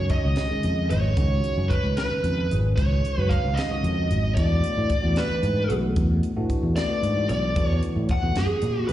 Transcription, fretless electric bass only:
0.25 0.36 C#2 medium
0.51 muted fretless electric bass stroke soft
0.64 0.87 F2 medium
0.91 1.14 G#1 medium
1.17 1.40 C#2 medium
1.58 1.69 F#2 medium
1.84 1.95 C#2 medium
2.11 muted fretless electric bass stroke soft
2.24 2.47 F2 loud
2.51 2.74 G#1 medium
2.78 3.01 C#2 medium
3.18 3.29 F#2 medium
3.45 3.56 C#2 medium
3.71 muted fretless electric bass stroke soft
3.83 4.07 F2 medium
4.10 4.33 G#1 medium
4.37 4.60 E2 medium
4.77 4.89 A2 medium
5.04 5.15 E2 medium
5.30 muted fretless electric bass stroke soft
5.43 5.66 G#2 medium
5.70 5.93 B1 medium
5.97 6.20 E2 loud
6.37 6.48 A2 medium
6.63 6.75 E2 medium
6.90 muted fretless electric bass stroke soft
7.02 7.26 G#2 medium
7.30 7.53 B1 medium
7.57 7.80 E2 medium
7.96 8.08 A2 medium
8.23 8.34 E2 medium
8.35 8.47 F#2 loud
8.49 muted fretless electric bass stroke soft
8.62 8.86 A#2 loud
8.89 8.93 C#2 medium

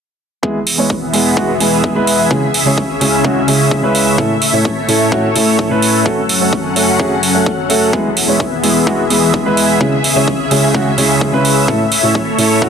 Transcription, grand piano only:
0.43 0.56 G#3 medium
0.43 0.56 B3 medium
0.43 0.57 E4 medium
0.43 0.57 G#4 medium
0.78 0.91 G#3 medium
0.78 0.92 B3 medium
0.78 0.92 E4 medium
0.78 0.92 C#5 medium
1.13 1.34 G#3 medium
1.13 1.34 B3 medium
1.13 1.34 E4 medium
1.13 1.34 G#4 medium
1.36 1.50 G#3 medium
1.36 1.50 B3 medium
1.36 1.50 E4 medium
1.36 1.50 F#4 medium
1.60 1.93 G#3 medium
1.60 1.93 B3 medium
1.60 1.93 E4 medium
1.60 1.93 G#4 medium
1.95 2.28 G#3 medium
1.95 2.28 B3 medium
1.95 2.28 E4 medium
1.95 2.28 B4 medium
2.30 2.44 C#3 medium
2.30 2.44 G#3 medium
2.30 2.44 C#4 medium
2.30 2.44 E4 medium
2.30 2.44 G#4 medium
2.65 2.79 C#3 medium
2.65 2.79 G#3 medium
2.65 2.79 C#4 medium
2.65 2.79 E4 medium
2.65 2.79 C#5 medium
3.00 3.21 C#3 medium
3.00 3.22 G#3 medium
3.00 3.22 C#4 medium
3.00 3.22 E4 medium
3.00 3.22 G#4 medium
3.24 3.37 C#3 medium
3.24 3.38 G#3 medium
3.24 3.38 C#4 medium
3.24 3.38 E4 medium
3.24 3.38 F#4 medium
3.47 3.80 C#3 medium
3.47 3.80 G#3 medium
3.47 3.80 C#4 medium
3.47 3.80 E4 medium
3.47 3.81 G#4 medium
3.82 4.15 C#3 medium
3.82 4.15 G#3 medium
3.82 4.15 C#4 medium
3.82 4.16 E4 medium
3.82 4.16 B4 medium
4.18 4.31 A2 medium
4.18 4.31 A3 medium
4.18 4.31 C#4 medium
4.18 4.32 E4 medium
4.18 4.32 A4 medium
4.53 4.66 A2 medium
4.53 4.66 A3 medium
4.53 4.67 C#4 medium
4.53 4.67 E4 medium
4.53 4.67 C#5 medium
4.88 5.09 A2 medium
4.88 5.09 A3 medium
4.88 5.09 C#4 medium
4.88 5.09 E4 medium
4.88 5.09 A4 medium
5.11 5.25 A2 medium
5.11 5.25 A3 medium
5.11 5.25 C#4 medium
5.11 5.25 E4 medium
5.11 5.25 F#4 medium
5.35 5.67 A2 medium
5.35 5.68 A3 medium
5.35 5.68 C#4 medium
5.35 5.68 E4 medium
5.35 5.68 A4 medium
5.70 6.03 A2 medium
5.70 6.03 A3 medium
5.70 6.03 C#4 medium
5.70 6.03 E4 medium
5.70 6.03 B4 medium
6.05 6.19 A3 medium
6.05 6.19 C#4 medium
6.05 6.19 F#4 medium
6.05 6.19 A4 medium
6.40 6.54 A3 medium
6.40 6.54 C#4 medium
6.40 6.54 F#4 medium
6.40 6.54 C#5 medium
6.75 6.96 A3 medium
6.75 6.97 C#4 medium
6.75 6.97 F#4 medium
6.75 6.97 A4 medium
6.99 7.12 A3 medium
6.99 7.13 C#4 medium
6.99 7.13 F#4 medium
6.99 7.13 G#4 medium
7.34 7.48 A3 medium
7.34 7.48 C#4 medium
7.34 7.48 F#4 medium
7.34 7.48 A4 medium
7.69 7.90 A3 medium
7.69 7.90 C#4 medium
7.69 7.91 F#4 medium
7.69 7.91 A4 medium
7.93 8.06 G#3 medium
7.93 8.06 B3 medium
7.93 8.07 E4 medium
7.93 8.07 G#4 medium
8.28 8.41 G#3 medium
8.28 8.41 B3 medium
8.28 8.42 E4 medium
8.28 8.42 C#5 medium
8.63 8.84 G#3 medium
8.63 8.84 B3 medium
8.63 8.84 E4 medium
8.63 8.84 G#4 medium
8.86 9.00 G#3 medium
8.86 9.00 B3 medium
8.86 9.00 E4 medium
8.86 9.00 F#4 medium
9.10 9.42 G#3 medium
9.10 9.43 B3 medium
9.10 9.43 E4 medium
9.10 9.43 G#4 medium
9.45 9.78 G#3 medium
9.45 9.78 B3 medium
9.45 9.78 E4 medium
9.45 9.78 B4 medium
9.80 9.94 C#3 medium
9.80 9.94 G#3 medium
9.80 9.94 C#4 medium
9.80 9.94 E4 medium
9.80 9.94 G#4 medium
10.15 10.29 C#3 medium
10.15 10.29 G#3 medium
10.15 10.29 C#4 medium
10.15 10.29 E4 medium
10.15 10.29 C#5 medium
10.50 10.71 C#3 medium
10.50 10.72 G#3 medium
10.50 10.72 C#4 medium
10.50 10.72 E4 medium
10.50 10.72 G#4 medium
10.74 10.87 C#3 medium
10.74 10.88 G#3 medium
10.74 10.88 C#4 medium
10.74 10.88 E4 medium
10.74 10.88 F#4 medium
10.97 11.30 C#3 medium
10.97 11.30 G#3 medium
10.97 11.30 C#4 medium
10.97 11.30 E4 medium
10.97 11.31 G#4 medium
11.32 11.65 C#3 medium
11.32 11.65 G#3 medium
11.32 11.65 C#4 medium
11.32 11.66 E4 medium
11.32 11.66 B4 medium
11.68 11.81 A2 medium
11.68 11.81 A3 medium
11.68 11.81 C#4 medium
11.68 11.82 E4 medium
11.68 11.82 A4 medium
12.03 12.16 A2 medium
12.03 12.16 A3 medium
12.03 12.17 C#4 medium
12.03 12.17 E4 medium
12.03 12.17 C#5 medium
12.38 12.59 A2 medium
12.38 12.59 A3 medium
12.38 12.59 C#4 medium
12.38 12.59 E4 medium
12.38 12.59 A4 medium
12.61 12.69 A2 medium
12.61 12.69 A3 medium
12.61 12.69 C#4 medium
12.61 12.69 E4 medium
12.61 12.69 F#4 medium

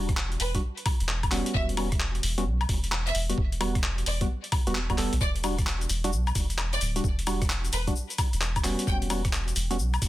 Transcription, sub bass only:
0.00 0.37 E1 loud
0.40 0.59 E1 loud
1.00 1.28 E1 medium
1.32 1.42 E1 medium
1.54 2.20 E1 loud
2.23 2.48 E1 loud
2.46 2.65 B1 loud
2.69 3.11 E1 medium
3.15 3.33 E1 loud
3.38 4.03 E1 loud
4.06 4.25 E1 loud
4.67 4.89 E1 medium
4.90 4.96 E1 medium
4.98 5.09 E1 loud
5.13 5.19 B1 loud
5.21 5.86 E1 loud
5.89 6.14 E1 medium
6.12 6.31 B1 loud
6.35 6.78 E1 medium
6.81 7.00 D1 loud
7.04 7.69 E1 loud
7.73 7.91 E1 medium
8.33 8.61 E1 medium
8.64 8.75 E1 loud
8.87 9.53 E1 loud
9.56 9.80 E1 medium
9.79 9.98 B1 loud
10.02 10.08 E1 medium

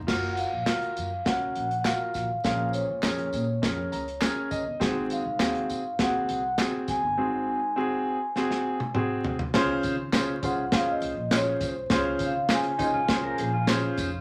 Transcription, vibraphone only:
0.33 0.39 F#5 medium
0.38 1.29 F5 medium
1.25 1.74 F#5 loud
1.80 1.86 F#5 medium
1.85 2.40 F5 loud
2.44 2.68 F5 loud
2.69 2.75 C5 medium
2.73 3.01 C#5 medium
5.12 6.03 F5 medium
6.01 6.55 F#5 loud
6.89 8.92 G#5 loud
10.45 10.72 F#5 medium
10.75 10.88 F5 medium
10.91 11.35 D#5 medium
11.35 11.64 C#5 medium
11.64 11.93 C5 medium
11.95 12.23 C#5 loud
12.25 12.53 F5 medium
12.54 13.67 G#5 loud

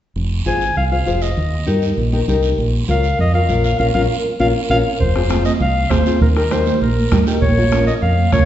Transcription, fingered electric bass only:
0.16 0.40 F1 medium
0.46 0.70 G#1 medium
0.77 1.01 C2 medium
1.07 1.31 F1 medium
1.37 1.61 D#2 medium
1.68 1.92 G2 medium
1.98 2.22 A#1 medium
2.28 2.52 C2 medium
2.58 2.82 A#1 medium
2.88 3.13 C#2 medium
3.19 3.43 F2 loud
3.49 3.73 A#1 medium
3.79 3.91 A#1 medium
3.94 4.06 A#1 medium
4.40 4.51 A#1 medium
4.70 4.81 A#1 medium
5.00 5.49 F1 loud
5.60 5.85 C2 loud
5.91 6.03 G#1 medium
6.21 6.70 D#2 loud
6.82 7.06 A#1 medium
7.12 7.24 G2 medium
7.42 7.90 A#1 loud
8.02 8.27 F2 medium
8.33 8.45 C#2 medium

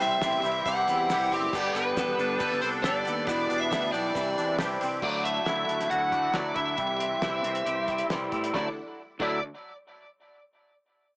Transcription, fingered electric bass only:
0.02 0.20 C2 medium
0.21 0.40 A1 medium
0.43 0.62 C2 medium
0.66 0.85 C2 loud
0.87 1.06 E2 medium
1.09 1.28 C2 loud
1.31 1.50 F#1 loud
1.53 1.72 G1 loud
1.74 1.93 G1 medium
1.97 2.16 E1 medium
2.18 2.37 G1 medium
2.40 2.59 G1 loud
2.63 2.82 C2 medium
2.86 3.04 G1 medium
3.08 3.29 D#2 loud
3.28 3.47 E1 medium
3.51 3.69 E1 medium
3.72 3.90 D2 medium
3.94 4.13 B1 medium
4.15 4.34 C2 loud
4.39 4.57 E2 medium
4.61 4.79 C2 medium
4.82 5.00 C2 medium
5.03 5.38 D2 medium
5.47 5.65 D2 medium
5.69 5.87 D2 medium
5.91 6.26 D2 medium
6.36 6.53 D2 medium
6.56 6.74 D2 medium
6.79 7.14 C2 medium
7.23 7.40 C2 medium
7.44 7.62 C2 medium
7.66 8.02 C2 medium
8.10 8.28 C2 medium
8.33 8.50 A2 medium
8.54 8.66 D2 medium
9.20 9.40 D2 loud

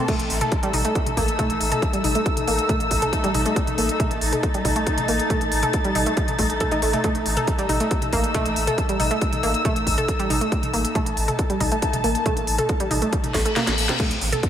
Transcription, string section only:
0.00 14.00 A3 medium
0.00 14.00 A4 medium
0.00 0.31 E5 medium
0.00 0.70 A5 medium
0.18 14.00 D#4 medium
0.68 4.18 E6 medium
4.16 7.66 A6 medium
7.63 11.13 E6 medium
11.11 14.02 A5 medium

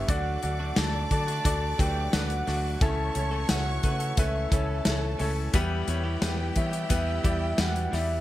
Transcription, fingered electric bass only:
0.09 0.36 D2 loud
0.44 0.71 D2 medium
0.77 1.05 D2 loud
1.11 1.39 D3 medium
1.45 1.73 D2 loud
1.79 2.07 D2 medium
2.13 2.41 D2 loud
2.48 2.75 D2 medium
2.81 3.09 C#2 loud
3.16 3.43 C#2 medium
3.50 3.77 C#2 loud
3.84 4.11 C#3 loud
4.18 4.45 C#2 loud
4.52 4.79 C#2 loud
4.86 5.14 C#2 loud
5.20 5.48 C#2 loud
5.54 5.82 E2 loud
5.88 6.16 E2 loud
6.22 6.50 E2 loud
6.56 6.84 E3 medium
6.90 7.18 E2 loud
7.25 7.52 E2 loud
7.58 7.86 E2 loud
7.93 8.20 E2 medium

